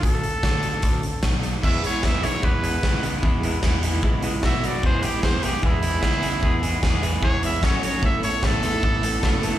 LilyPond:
<<
  \new Staff \with { instrumentName = "Trumpet" } { \time 4/4 \key e \mixolydian \tempo 4 = 150 a'2. r4 | e''8 cis''8 e''8 cis''8 b'2 | r2. e''8 d''8 | c''8 g'8 c''8 g'8 e'2~ |
e'4 r4 cis''8 e''8 cis''8 cis''8 | e''8 cis''8 a'2. | }
  \new Staff \with { instrumentName = "Clean electric guitar" } { \time 4/4 \key e \mixolydian <d a d' f' a'>1 | <e gis b e'>8 <e gis b e'>8 <e gis b e'>8 <e gis b e'>8 <e gis b e'>8 <e gis b e'>8 <e gis b e'>8 <e gis b e'>8 | <e gis b e'>8 <e gis b e'>8 <e gis b e'>8 <e gis b e'>8 <e gis b e'>8 <e gis b e'>8 <b, fis b fis'>8 <b, fis b fis'>8 | <e gis b e' gis'>8 <e gis b e' gis'>8 <e gis b e' gis'>8 <e gis b e' gis'>8 <e gis b e' gis'>8 <e gis b e' gis'>8 <e gis b e' gis'>8 <e gis b e' gis'>8 |
<e gis b e' gis'>8 <e gis b e' gis'>8 <e gis b e' gis'>8 <e gis b e' gis'>8 <e gis b e' gis'>8 <e gis b e' gis'>8 <fis cis' fis' cis''>8 <fis cis' fis' cis''>8 | <a b e' a'>8 <a b e' a'>8 <a b e' a'>8 <a b e' a'>8 <a b e' a'>8 <a b e' a'>8 <a b e' a'>8 <a b e' a'>8 | }
  \new Staff \with { instrumentName = "Picked electric bass" } { \clef bass \time 4/4 \key e \mixolydian d,8 r8 d,4 d,8 r8 b,,4 | e,8 r8 e,8 b,,16 r16 e,4 cis,4 | e,4 e,4 cis,4 b,,8 r8 | e,8 r8 e,8 b,,16 r16 e,4 cis,4 |
e,4 e,4 e,4 fis,8 r8 | a,,8 r8 a,,8 e,16 r16 a,,4 fis,,4 | }
  \new DrumStaff \with { instrumentName = "Drums" } \drummode { \time 4/4 <hh bd>8 hh8 <hh bd sn>8 hh8 <hh bd>8 hh8 <hh bd sn>8 hh8 | <cymc bd>8 hh8 <bd sn>8 hh8 bd8 hh8 <bd sn>8 hh8 | bd8 hh8 <bd sn>8 hh8 bd8 hh8 <bd sn>8 hh8 | bd8 hh8 <bd sn>8 hh8 bd8 hh8 <bd sn>8 hh8 |
bd8 hh8 <bd sn>8 hh8 bd8 hh8 <bd sn>8 hh8 | bd8 hh8 <bd sn>8 hh8 bd8 hh8 <bd sn>8 hh8 | }
>>